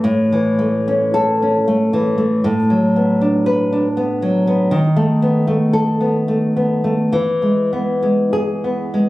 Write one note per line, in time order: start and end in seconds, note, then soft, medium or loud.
0.04 2.40 A2 medium
0.32 1.55 E3 soft
0.59 1.66 A3 soft
0.88 1.41 C#4 soft
1.14 1.57 A4 medium
1.42 2.44 C#4 soft
1.68 2.17 A3 medium
1.93 2.44 E3 medium
2.18 2.44 A3 medium
2.44 4.69 A2 medium
2.70 3.85 F#3 medium
2.96 3.96 B3 soft
3.21 3.71 D4 medium
3.46 3.87 B4 medium
3.72 4.73 D4 soft
3.97 4.46 B3 medium
4.22 4.72 F#3 medium
4.47 4.72 B3 medium
4.71 7.07 D#3 medium
4.96 5.46 A3 medium
5.22 5.99 B3 medium
5.47 6.27 A3 medium
5.73 6.16 A4 medium
6.01 6.55 B3 medium
6.28 6.83 A3 medium
6.57 7.13 B3 soft
6.84 7.13 A3 soft
7.13 9.09 E3 medium
7.42 8.01 G#3 soft
7.73 8.63 B3 soft
8.02 8.93 G#3 soft
8.33 8.81 G#4 medium
8.64 9.09 B3 soft
8.94 9.09 G#3 soft